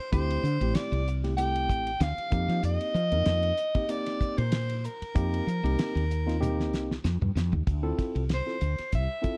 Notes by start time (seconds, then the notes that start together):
Already playing: C5
0.12 D2 A3 C4 E4 G4 C5, kick, hi-hat pedal, ride
0.30 ride
0.43 D3, hi-hat pedal
0.61 A1 A3 C4 E4 G4, ride
0.74 D5, snare, hi-hat pedal, ride
0.92 C2, ride
1.07 hi-hat pedal
1.24 A3 C4 E4 G4, snare, ride
1.37 A3 C4 E4 G4 G5, hi-hat pedal, ride
1.55 ride
1.69 A1, kick, hi-hat pedal
1.87 ride
2.00 D2 F5, snare, hi-hat pedal, ride
2.18 E4 G4, ride
2.31 F2 A#3 C4 D#4 G4, kick, hi-hat pedal
2.48 F3, snare, ride
2.63 F2 D#5, hi-hat pedal, ride
2.81 ride
2.94 F3, hi-hat pedal
3.11 F2 A#3 C4 D#4 A#4, ride
3.25 F2, snare, hi-hat pedal, ride
3.43 ride
3.57 hi-hat pedal
3.75 A#3 C4 D#4 G4, kick, ride
3.88 A#3 C4 D#4 G4 D5, hi-hat pedal, ride
4.06 snare, ride
4.20 muted fretless electric bass stroke, kick, hi-hat pedal
4.37 A#2 C5, ride
4.52 snare, hi-hat pedal, ride
4.69 D#4 A#4, ride
4.77 C5
4.84 A#4, hi-hat pedal
5.01 muted fretless electric bass stroke, ride
5.15 F2 A#3 C4 D#4 G4, kick, hi-hat pedal, ride
5.34 ride
5.47 F3, hi-hat pedal
5.63 C2 A#3 C4 D#4 G4, ride
5.79 snare, hi-hat pedal, ride
5.95 D#2, ride
6.11 hi-hat pedal
6.26 A#3 C4 D#4 F4, snare, ride
6.40 A#3 C4 D#4 G4, hi-hat pedal, high tom
6.60 snare
6.73 C2, snare, hi-hat pedal
6.91 snare
7.04 F2, snare, hi-hat pedal
7.20 G2 D#4 F4, mid tom
7.35 F2, snare, hi-hat pedal
7.52 D#2, floor tom
7.67 D2, kick, hi-hat pedal, ride
7.83 C4 E4 F4 A4
7.99 kick, snare, hi-hat pedal, ride
8.15 C2, ride
8.29 snare, hi-hat pedal, ride
8.34 C5
8.46 C4 E4 F4 A4, snare
8.61 D2 F4 C5, hi-hat pedal, ride
8.78 snare, ride
8.92 C2 E5, kick, hi-hat pedal, ride
9.22 C4 E4 F4 A4, muted fretless electric bass stroke, kick, hi-hat pedal, ride